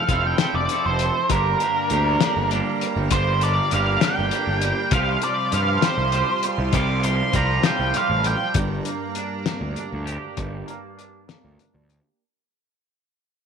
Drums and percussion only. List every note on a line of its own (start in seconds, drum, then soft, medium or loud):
0.09 kick medium
0.09 closed hi-hat medium
0.38 snare loud
0.38 closed hi-hat medium
0.69 closed hi-hat medium
0.99 closed hi-hat medium
1.30 kick loud
1.30 closed hi-hat medium
1.60 closed hi-hat medium
1.90 closed hi-hat medium
2.21 snare loud
2.21 closed hi-hat medium
2.51 closed hi-hat medium
2.81 closed hi-hat medium
3.11 kick loud
3.11 closed hi-hat loud
3.41 closed hi-hat medium
3.71 closed hi-hat medium
4.01 snare loud
4.01 closed hi-hat medium
4.31 closed hi-hat medium
4.61 closed hi-hat medium
4.91 kick loud
4.91 closed hi-hat medium
5.22 closed hi-hat medium
5.52 closed hi-hat medium
5.82 snare loud
5.82 closed hi-hat medium
6.12 closed hi-hat medium
6.43 closed hi-hat medium
6.73 kick loud
6.73 closed hi-hat medium
7.03 closed hi-hat medium
7.33 kick medium
7.33 closed hi-hat medium
7.63 snare loud
7.63 closed hi-hat loud
7.94 closed hi-hat medium
8.24 closed hi-hat medium
8.54 kick loud
8.54 closed hi-hat medium
8.85 closed hi-hat medium
9.15 closed hi-hat medium
9.46 snare loud
9.46 closed hi-hat medium
9.76 closed hi-hat medium
10.07 closed hi-hat medium
10.37 kick loud
10.37 closed hi-hat medium
10.68 closed hi-hat soft
10.99 closed hi-hat medium
11.29 snare loud
11.29 closed hi-hat medium
11.59 closed hi-hat medium
11.90 closed hi-hat medium